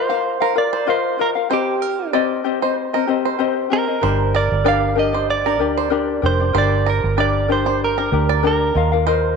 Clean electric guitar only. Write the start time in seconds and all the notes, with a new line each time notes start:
Already playing: C5
0.58 D5
0.90 C5
1.21 A#4
1.53 G4
3.73 A#4
4.36 D5
4.68 F5
4.99 D#5
5.30 D5
6.26 C5
6.58 D5
6.90 A#4
7.20 D5
7.52 C5
7.84 A#4
8.47 A#4